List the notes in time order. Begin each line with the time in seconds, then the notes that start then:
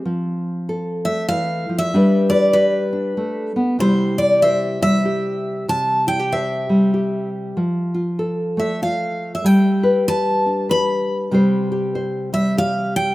Already playing: C4
0.05 F3
0.69 A4
1.05 A3 E5
1.28 E3 F5
1.69 F3
1.78 E5
1.94 G3 D4 G4 B4
2.30 B4 D5
2.53 G4 B4
2.93 D4
3.17 A3
3.56 B3
3.79 C3 G3 E4 G4 C5
4.18 G4 D5
4.42 C5 E5
4.82 G3 E5
5.05 G4
5.68 C3 A5
6.07 E4 G5
6.20 G4
6.32 C5 E5
6.69 G3
6.94 G4
7.57 F3
7.94 F4
8.19 A4
8.57 A3 E5
8.82 F4 F5
9.35 E5
9.44 G3 G5
9.83 B4
10.08 B4 A5
10.46 D4
10.69 B4 B5
11.31 C3 G3 G4 C5
11.72 G4
11.95 C5
12.33 G3 E5
12.57 G4 F5
12.96 G5